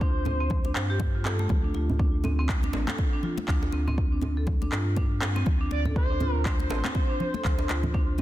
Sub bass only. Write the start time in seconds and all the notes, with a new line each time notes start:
Already playing: D2
0.76 G2
1.50 D2
1.75 D2
2.74 A1
3.48 D2
3.73 D2
4.72 G2
5.47 D2
5.71 D2
6.70 A1
7.45 D2
7.70 D2